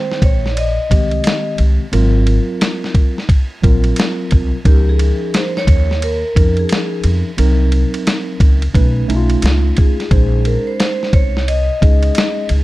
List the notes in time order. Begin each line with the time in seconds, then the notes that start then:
Already playing: D#3 G#3 C4 C5 G5
0.12 snare
0.22 A#1 C#5, kick, ride
0.46 snare
0.53 D5, ride
0.58 D#5
0.89 C2 D#3 G#3 C4 G4, kick, ride
1.11 ride
1.24 snare, hi-hat pedal, ride
1.58 C2, ride
1.92 G#1 F#3 C4 F4 A#4, ride
2.27 ride
2.61 snare, hi-hat pedal, ride
2.84 snare
2.95 kick, ride
3.18 snare
3.29 kick, ride
3.62 A#1 F#3 C4 F4 A#4, kick, ride
3.84 ride
3.96 snare, hi-hat pedal, ride
4.31 C2, kick, ride
4.64 C#2 F3 C#4 D#4 G4 A#4, kick, ride
4.89 G#4
4.99 ride
5.34 C5, snare, hi-hat pedal, ride
5.57 C#5, snare
5.67 D#2, kick, ride
5.91 snare
6.02 A#4, ride
6.35 F2 F3 C#4 D#4 A#4, kick, ride
6.57 G#4, ride
6.69 snare, hi-hat pedal, ride
7.04 F2, ride
7.37 C2 F#3 C4 D#4 A#4, ride
7.72 ride
7.94 ride
8.07 snare, hi-hat pedal, ride
8.40 C#2, kick, ride
8.62 ride
8.74 B1 A3 C#4 D#4 B4, kick, ride
9.08 B1 A3 C#4 D#4 E4, ride
9.16 F4
9.30 ride
9.42 C#2, snare, hi-hat pedal, ride
9.77 G#4, kick, ride
10.00 snare, ride
10.11 A#1 G#3 C#4 D#4 G#4 C5, kick, ride
10.45 A#4, ride
10.67 C5
10.79 C5, snare, hi-hat pedal, ride
11.03 snare
11.13 C2 C#5, kick, ride
11.37 snare
11.48 D#5, ride
11.81 C#2 G#3 C#4 D#4 G#4, kick, ride
12.03 ride
12.15 snare, hi-hat pedal, ride
12.49 C#2, ride